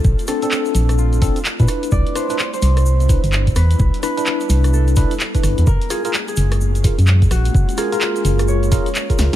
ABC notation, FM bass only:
X:1
M:4/4
L:1/16
Q:"Swing 16ths" 1/4=128
K:Cmix
V:1 name="FM bass" clef=bass
B,,, z4 z B,,,4- B,,, z2 B,, z2 | C,, z4 z C,,4- C,, G,,,3 E,, z | C,, z4 z C,,4- C,, z3 G,,, E,, | _G,,, z4 z G,,,4- G,,, _G,,3 B,,, z |
_G,,, z4 z G,,,4- G,,, z3 _D,, z |]